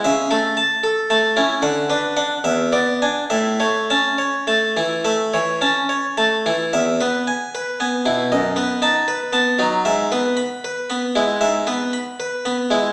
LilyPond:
\new Staff \with { instrumentName = "Harpsichord" } { \time 4/4 \key a \major \tempo 4 = 76 << { \tuplet 3/2 { r4 a''8 } r4 fis''8 r8 \tuplet 3/2 { r4 gis''8 } | \tuplet 3/2 { r4 a''8 } r2. | \key e \major \tuplet 3/2 { r4 gis''8 } r4 \tuplet 3/2 { r4 a''8 } r4 | \tuplet 3/2 { r4 b''8 } r2. | } \\ { \tuplet 3/2 { <cis e''>8 <a a'>8 r8 a'8 <a a''>8 <cis' e'>8 d8 <d' b'>8 <d' fis''>8 <e, e''>8 <b d''>8 d'8 } | \tuplet 3/2 { <a, e''>8 <a cis''>8 cis'8 cis''8 <a a''>8 <e e'>8 <a e''>8 <e cis''>8 <cis' a''>8 cis''8 <a a''>8 <e e'>8 } | \tuplet 3/2 { <e, e''>8 <b b'>8 r8 b'8 <b gis''>8 <b, e'>8 <fis, dis''>8 <b b'>8 dis'8 b'8 <b a''>8 <fis dis'>8 } | \tuplet 3/2 { <gis, e''>8 <b b'>8 r8 b'8 <b b''>8 <gis e'>8 <gis, e''>8 <b b'>8 b''8 b'8 <b b''>8 <gis e'>8 } | } >> }